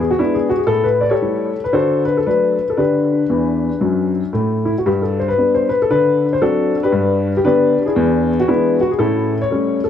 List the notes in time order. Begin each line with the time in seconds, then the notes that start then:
Already playing: E2
0.01 G#4
0.11 F#4
0.19 G#3 B3 D4 E4
0.34 G#4
0.50 F#4
0.58 G#4
0.67 A2 A4
0.84 B4
1.01 D5
1.09 G4 A4 C#5
1.21 G3 A3 E4
1.64 B4
1.73 D3 F#4 A4 C5
2.05 B4
2.17 A4
2.26 F#3 A3 D4 B4
2.70 A4
2.77 D3 D4 G4 B4
3.30 E2 E3
3.81 F#2 F#3
4.33 A2 A3
4.65 E4
4.78 F#4
4.86 G2 G4
5.02 A4
5.20 C5
5.28 B4
5.38 G3 B3 D4
5.54 C5
5.69 B4
5.82 A4
5.91 D3 B4
6.33 C5
6.42 F#3 C4 D4 F#4 A4
6.83 D4 G4 B4
6.92 G2
7.37 G4
7.44 D3 B3 D4 G4 B4
7.86 D4 E4 G#4
7.96 E2
8.40 F#4
8.48 E3 G#3 B3 D4 E4
8.81 F#4
8.91 G#4
8.99 A2 C#4 E4 A4
9.41 C#5
9.51 G3 A3 C#4
9.84 A4